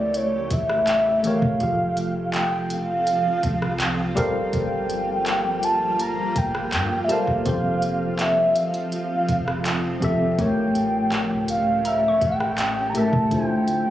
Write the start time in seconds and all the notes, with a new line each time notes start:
Already playing: C#2 C#3 A3 E4 G4 A#4 C#5 D5
0.14 C#5, closed hi-hat
0.51 A1 E5, kick, closed hi-hat
0.69 cross-stick
0.87 clap, closed hi-hat
1.23 E3 A3 G4 A#4 F5, closed hi-hat
1.27 C#5
1.42 A2, kick
1.59 F1 F3 C4 F4 G4 G#4 A4, kick, closed hi-hat
1.63 F5
1.69 A4
1.97 closed hi-hat
2.34 G5, clap, closed hi-hat
2.65 G5
2.70 F5, closed hi-hat
3.07 closed hi-hat
3.43 C2, kick, closed hi-hat
3.62 cross-stick
3.80 clap, closed hi-hat
4.15 G1 G3 A#3 F4 G4 A4 A#4 C5 F5, kick, closed hi-hat
4.53 G1 G5, kick, closed hi-hat
4.90 closed hi-hat
5.26 clap, closed hi-hat
5.63 A5, closed hi-hat
6.00 A#5, closed hi-hat
6.36 G1 G5, kick, closed hi-hat
6.55 cross-stick
6.72 G2, clap, closed hi-hat
7.04 E5
7.08 G3 G4 A4 A#4 C5 F5 A5, closed hi-hat
7.27 G1, kick
7.45 F1 F3 C4 F4 G4 A4 C5 C6, kick, closed hi-hat
7.82 closed hi-hat
8.19 E5, clap, closed hi-hat
8.56 F5, closed hi-hat
8.74 closed hi-hat
8.92 closed hi-hat
9.29 F1, kick, closed hi-hat
9.48 cross-stick
9.66 clap, closed hi-hat
10.00 F1 F3 C4 G4 A4, kick, closed hi-hat
10.04 E5
10.37 A1 A2 A3 C#4 G4 A#4 G5, kick, closed hi-hat
10.41 C#5
10.75 closed hi-hat
11.12 clap, closed hi-hat
11.30 C#2
11.48 F5, closed hi-hat
11.85 E5 A#5, closed hi-hat
12.08 C#6
12.21 A1 G5, kick, closed hi-hat
12.31 E6
12.40 cross-stick
12.58 clap, closed hi-hat
12.89 A#5
12.93 A2 A3 G4 A#4 A5, closed hi-hat
12.98 E5
13.13 A2, kick
13.30 D1 D3 A3 E4 F4 G5, kick, closed hi-hat
13.34 C5
13.68 closed hi-hat